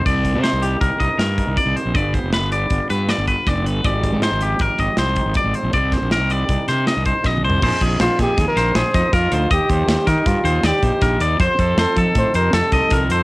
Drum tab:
CC |x-----------------------------|------------------------------|------------------------------|------------------------------|
HH |x--x--x--x--x--x--x--x--x--x--|x--x--x--x--x--x--x--x--x--x--|x--x--x--x--x--x--x--x--x--x--|x--x--x--x--x--x--x--x--------|
SD |------o-----------o-----------|------o-----------o-----o-----|------o-----------o-----------|---o--o--------o--o-----o-----|
T2 |------------------------------|------------------------------|------------------------------|--------------------------o---|
FT |------------------------------|------------------------------|------------------------------|----------------------------o-|
BD |o--o--------o--o-----o--o-----|o--o--------o--------o--o-----|o--o--------o--o-----o--o-----|o--o--------o--------o--o-----|

CC |x-----------------------------|------------------------------|------------------------------|
HH |---x--x--x--x--x--x--x--x--x--|x--x--x--x--x--x--x--x--x--x--|x--x--x--x--x--x--x--x--x--x--|
SD |------o--o--o--o--o--o--------|------o--o--o-----o-----o-----|------o-----------o-----o-----|
T2 |------------------------------|------------------------------|------------------------------|
FT |------------------------------|------------------------------|------------------------------|
BD |o--o-----o--o--------o--o-----|o--o-----o--o--------o--o-----|o--o-----o--o--------o--o-----|